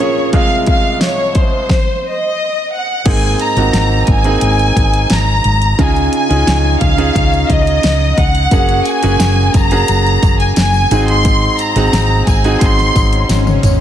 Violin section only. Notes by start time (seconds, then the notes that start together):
Already playing: C#5
0.35 F5
0.69 F5
1.04 C#5
1.39 C5
2.07 D#5
2.74 F#5
3.09 G#5
3.42 A#5
4.10 G#5
5.14 A#5
5.81 G#5
6.15 G#5
6.84 F5
7.51 D#5
8.19 F#5
8.87 G#5
9.54 A#5
10.40 G#5
10.57 G#5
11.08 C6
11.60 A#5
12.28 G#5
12.61 C6